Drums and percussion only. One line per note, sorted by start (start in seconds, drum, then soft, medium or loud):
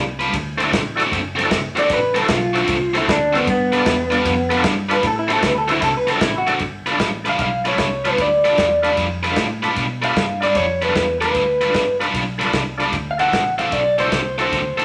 0.20 snare soft
0.20 ride medium
0.33 kick medium
0.33 snare soft
0.33 ride medium
0.60 snare soft
0.60 ride medium
0.73 kick medium
0.73 snare loud
0.73 ride medium
1.00 snare soft
1.00 ride medium
1.12 kick medium
1.12 snare soft
1.12 ride medium
1.39 snare soft
1.39 ride medium
1.51 kick medium
1.51 snare loud
1.51 ride medium
1.77 snare soft
1.77 ride medium
1.90 kick medium
1.90 snare soft
1.90 ride medium
2.16 snare soft
2.16 ride medium
2.28 kick medium
2.28 snare loud
2.28 ride medium
2.55 snare soft
2.55 ride medium
2.68 kick medium
2.68 snare soft
2.68 ride medium
2.95 snare soft
2.95 ride medium
3.08 kick medium
3.08 snare loud
3.08 ride medium
3.35 snare soft
3.35 ride medium
3.47 kick medium
3.47 snare soft
3.47 ride medium
3.73 snare soft
3.73 ride medium
3.86 kick medium
3.86 snare loud
3.86 ride medium
4.12 snare soft
4.12 ride medium
4.25 kick medium
4.25 snare soft
4.25 ride medium
4.51 snare soft
4.51 ride medium
4.64 kick medium
4.64 snare loud
4.64 ride medium
4.91 snare soft
4.91 ride medium
5.03 kick medium
5.03 snare soft
5.03 ride medium
5.30 snare soft
5.30 ride medium
5.42 kick medium
5.42 snare loud
5.42 ride medium
5.69 snare soft
5.69 ride medium
5.82 kick medium
5.82 snare soft
5.82 ride medium
6.08 snare soft
6.08 ride medium
6.21 kick medium
6.21 snare loud
6.21 ride medium
6.48 snare soft
6.48 ride medium
6.59 kick medium
6.59 snare soft
6.59 ride medium
6.87 snare soft
6.87 ride medium
6.99 kick medium
6.99 snare loud
6.99 ride medium
7.26 snare soft
7.26 ride medium
7.39 kick medium
7.39 snare soft
7.39 ride medium
7.65 snare soft
7.65 ride medium
7.78 kick medium
7.78 snare medium
7.78 ride medium
8.05 snare soft
8.05 ride medium
8.18 kick medium
8.18 snare soft
8.18 ride medium
8.45 snare soft
8.45 ride medium
8.58 kick medium
8.58 snare loud
8.58 ride medium
8.84 snare soft
8.84 ride medium
8.97 kick medium
8.97 snare soft
8.97 ride medium
9.24 snare soft
9.24 ride medium
9.36 kick medium
9.36 snare loud
9.36 ride medium
9.64 snare soft
9.64 ride medium
9.76 kick medium
9.76 snare soft
9.76 ride medium
10.03 snare soft
10.03 ride medium
10.16 kick medium
10.16 snare loud
10.16 ride medium
10.43 snare soft
10.43 ride medium
10.55 kick medium
10.55 snare soft
10.55 ride medium
10.82 snare soft
10.82 ride medium
10.95 kick medium
10.95 snare loud
10.95 ride medium
11.22 snare soft
11.22 ride medium
11.34 kick medium
11.34 snare soft
11.34 ride medium
11.61 snare soft
11.61 ride medium
11.74 kick medium
11.74 snare medium
11.74 ride medium
12.01 snare soft
12.01 ride medium
12.14 kick medium
12.14 snare soft
12.14 ride medium
12.41 snare soft
12.41 ride medium
12.53 kick medium
12.53 snare loud
12.53 ride medium
12.80 snare soft
12.80 ride medium
12.93 kick medium
12.93 snare soft
12.93 ride medium
13.19 snare soft
13.19 ride medium
13.32 kick medium
13.32 snare loud
13.32 ride medium
13.59 snare soft
13.59 ride medium
13.72 kick medium
13.72 snare soft
13.72 ride medium
13.98 snare soft
13.98 ride medium
14.12 kick medium
14.12 snare medium
14.12 ride medium
14.39 snare soft
14.39 ride medium
14.52 kick medium
14.52 snare soft
14.52 ride medium
14.79 snare soft
14.79 ride medium